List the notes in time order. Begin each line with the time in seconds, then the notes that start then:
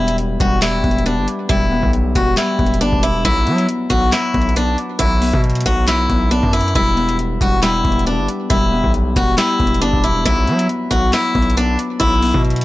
Already playing: E1 G3 B3 E4
0.08 closed hi-hat
0.18 closed hi-hat
0.40 E1 G3 F#4, kick, closed hi-hat
0.62 G3 E4, snare, clap, closed hi-hat
0.84 E1 B3, kick, closed hi-hat
0.91 closed hi-hat
0.99 closed hi-hat
1.06 B3 D4, closed hi-hat
1.17 G1
1.28 closed hi-hat
1.49 E1 G3 E4, kick, closed hi-hat
1.71 B3
1.83 B1, kick
1.93 closed hi-hat
2.15 E1 G3 F#4, kick, closed hi-hat
2.37 G3 E4, snare, clap, closed hi-hat
2.59 E1 B3, kick, closed hi-hat
2.66 closed hi-hat
2.74 closed hi-hat
2.81 G1 B3 D4, closed hi-hat
2.93 E1, kick
3.03 E4, closed hi-hat
3.25 B1 F#3 E4, kick, closed hi-hat
3.47 F#3 B3, closed hi-hat
3.58 closed hi-hat
3.69 closed hi-hat
3.90 B1 F#3 F#4, kick, closed hi-hat
4.12 F#3 E4, snare, clap, closed hi-hat
4.34 B1 B3, kick, closed hi-hat
4.42 closed hi-hat
4.49 closed hi-hat
4.56 B3 D4, closed hi-hat
4.78 closed hi-hat
4.99 B1 F#3 E4, kick, closed hi-hat
5.22 B3, open hi-hat
5.33 B2, kick
5.44 closed hi-hat
5.50 closed hi-hat
5.55 closed hi-hat
5.61 closed hi-hat
5.65 B1 F#3 F#4, kick, closed hi-hat
5.87 F#3 E4, snare, clap, closed hi-hat
6.09 B1 B3, kick, closed hi-hat
6.31 B3 D4, closed hi-hat
6.43 F#2, kick
6.53 E4, closed hi-hat
6.61 closed hi-hat
6.68 closed hi-hat
6.75 E1 G3 E4, kick, closed hi-hat
6.97 B3, closed hi-hat
7.09 closed hi-hat
7.19 closed hi-hat
7.41 E1 G3 F#4, kick, closed hi-hat
7.62 G3 E4, snare, clap, closed hi-hat
7.85 E1 B3, kick, closed hi-hat
7.92 closed hi-hat
7.99 closed hi-hat
8.07 B3 D4, closed hi-hat
8.18 G1
8.28 closed hi-hat
8.50 E1 G3 E4, kick, closed hi-hat
8.72 B3
8.84 B1, kick
8.94 closed hi-hat
9.16 E1 G3 F#4, kick, closed hi-hat
9.38 G3 E4, snare, clap, closed hi-hat
9.60 E1 B3, kick, closed hi-hat
9.67 closed hi-hat
9.74 closed hi-hat
9.81 G1 B3 D4, closed hi-hat
9.93 E1, kick
10.04 E4, closed hi-hat
10.25 B1 F#3 E4, kick, closed hi-hat
10.47 F#3 B3, closed hi-hat
10.59 closed hi-hat
10.69 closed hi-hat
10.91 B1 F#3 F#4, kick, closed hi-hat
11.13 F#3 E4, snare, clap, closed hi-hat
11.35 B1 B3, kick, closed hi-hat
11.42 closed hi-hat
11.50 closed hi-hat
11.57 B3 D4, closed hi-hat
11.79 closed hi-hat
12.00 B1 F#3 E4, kick, closed hi-hat
12.22 B3, open hi-hat
12.34 B2, kick
12.45 closed hi-hat
12.50 closed hi-hat
12.56 closed hi-hat
12.61 closed hi-hat